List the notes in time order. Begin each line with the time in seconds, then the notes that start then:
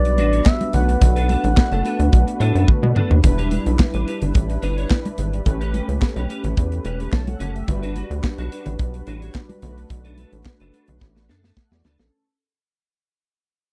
Already playing: B1 G3 B3 D4 F#4 B4 D5
0.05 muted clean electric guitar stroke, closed hi-hat
0.18 A1 D4 F#4 B4, closed hi-hat, muted conga
0.33 D4 F#4 C#5, closed hi-hat
0.46 E5, muted clean electric guitar stroke, kick, snare, clap, muted conga
0.61 muted clean electric guitar stroke, closed hi-hat, high conga
0.73 B1 A3 B3 D4 F#4 B4 F#5, closed hi-hat, low conga
0.89 muted clean electric guitar stroke, closed hi-hat
1.01 B1, muted clean electric guitar stroke, kick, closed hi-hat, low conga
1.16 D4 A4 B4, closed hi-hat
1.29 D4 A4 B4, closed hi-hat, muted conga, high conga
1.44 A1, muted clean electric guitar stroke, closed hi-hat, high conga
1.57 muted clean electric guitar stroke, kick, snare, clap, high conga
1.72 F#1 D4 A4 B4, closed hi-hat
1.85 D4 A4 B4, closed hi-hat, muted conga
1.99 D2, muted clean electric guitar stroke, closed hi-hat
2.12 B1, muted clean electric guitar stroke, kick, closed hi-hat, muted conga
2.27 muted clean electric guitar stroke, closed hi-hat
2.40 A2 D4 A4 B4, closed hi-hat, muted conga
2.55 F#2 D4 A4 B4, closed hi-hat
2.68 muted clean electric guitar stroke, kick, high tom, muted conga
2.83 B2, muted clean electric guitar stroke, high conga
2.96 D4 A4 B4, mid tom, muted conga, low conga
3.10 D#2, muted clean electric guitar stroke, floor tom
3.23 E1 G3 D4 E4 B4, muted clean electric guitar stroke, kick, closed hi-hat, muted conga, low conga
3.38 D4 G4 B4, closed hi-hat
3.51 D4 G4 B4, closed hi-hat, high conga
3.66 B1, muted clean electric guitar stroke, closed hi-hat
3.79 muted clean electric guitar stroke, kick, snare, clap, high conga
3.94 A1 D4 G4 B4, closed hi-hat
4.07 D4 G4 B4, closed hi-hat, muted conga
4.22 G1, muted clean electric guitar stroke, closed hi-hat, low conga
4.34 A1, muted clean electric guitar stroke, kick, closed hi-hat
4.50 muted clean electric guitar stroke, closed hi-hat
4.62 G1 D4 G4 B4, closed hi-hat
4.77 D4 G4 C#5, closed hi-hat
4.90 kick, snare, clap, muted conga
5.05 muted clean electric guitar stroke, closed hi-hat, high conga
5.18 G#1, closed hi-hat, muted conga, low conga
5.33 muted clean electric guitar stroke, closed hi-hat
5.45 A1 A3 C#4 G4 B4, muted clean electric guitar stroke, kick, closed hi-hat, low conga
5.61 C#4 G4 B4, closed hi-hat
5.74 C#4 G4 B4, closed hi-hat, muted conga, high conga
5.88 C#2, muted clean electric guitar stroke, closed hi-hat
6.01 muted clean electric guitar stroke, kick, snare, clap, high conga
6.16 B1 C#4 G4 B4, closed hi-hat
6.29 C#4 G4 B4, closed hi-hat, muted conga
6.44 A1, muted clean electric guitar stroke, closed hi-hat, low conga
6.57 E2, muted clean electric guitar stroke, kick, closed hi-hat, muted conga
6.72 muted clean electric guitar stroke, closed hi-hat
6.85 E1 C#4 G4 B4, closed hi-hat, muted conga
7.00 C#4 G4 B4, closed hi-hat
7.12 B1 C#5 A5, muted clean electric guitar stroke, kick, snare, clap
7.27 A4 F#5, muted clean electric guitar stroke, closed hi-hat, high conga
7.40 F#1 C#4 G4 B4, closed hi-hat, muted conga, low conga
7.55 G4 E5, muted clean electric guitar stroke, closed hi-hat
7.68 G1 G3 D4 F#4 B4, muted clean electric guitar stroke, kick, closed hi-hat, muted conga, low conga
7.83 D4 F#4 B4, closed hi-hat
7.96 D4 F#4 B4, closed hi-hat, muted conga, high conga
8.10 D2, muted clean electric guitar stroke, closed hi-hat
8.23 muted clean electric guitar stroke, kick, snare, clap, muted conga, high conga
8.38 B1 D4 F#4 B4, closed hi-hat
8.52 D4 F#4 B4, closed hi-hat
8.66 A1, muted clean electric guitar stroke, closed hi-hat, low conga
8.79 B1, muted clean electric guitar stroke, kick, closed hi-hat
8.94 muted clean electric guitar stroke, closed hi-hat
9.07 A1 D4 F#4 B4, closed hi-hat, muted conga
9.22 D4 F#4 C#5, closed hi-hat
9.35 muted clean electric guitar stroke, kick, snare, clap, muted conga
9.49 muted clean electric guitar stroke, closed hi-hat, high conga
9.62 B1 A3 D4 F#4 B4, closed hi-hat, low conga
9.77 muted clean electric guitar stroke, closed hi-hat
9.90 B1, muted clean electric guitar stroke, kick, closed hi-hat, muted conga, low conga
10.05 D4 A4 B4, closed hi-hat
10.18 D4 A4 B4, closed hi-hat, high conga
10.32 A1, muted clean electric guitar stroke, closed hi-hat, high conga
10.45 muted clean electric guitar stroke, kick, snare, clap, muted conga, high conga
10.60 F#1 D4 A4 B4, closed hi-hat
10.73 D4 A4 B4, closed hi-hat, muted conga
10.88 B1, muted clean electric guitar stroke, closed hi-hat, low conga
11.01 A1, muted clean electric guitar stroke, kick, snare, muted conga
11.16 muted clean electric guitar stroke, snare
11.29 F#2 D4 A4 B4, snare
11.44 D4 A4 B4, snare
11.57 A4 F#5, muted clean electric guitar stroke, kick, snare
11.71 E2 F#4 D5, muted clean electric guitar stroke, snare, high conga
11.84 D2 D4 A4 B4, snare, muted conga, low conga
11.99 A#1 C#4 A4, muted clean electric guitar stroke, snare